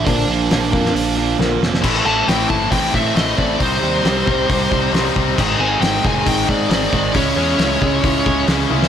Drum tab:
CC |----------------|x---------------|----------------|x---------------|
HH |o---o---o-------|----o---o---o---|o---o---o---o---|----o---o---o---|
SD |----o--o----o-oo|----o-------o---|----o-------o---|----o-------o---|
T1 |----------------|----------------|----------------|----------------|
BD |o-----o---------|o-----o-o-o---o-|o-----o-o-o---o-|o-----o-o-o---o-|

CC |----------------|
HH |o---o---o---o---|
SD |----o-------o--o|
T1 |--------------o-|
BD |o-----o-o-o-----|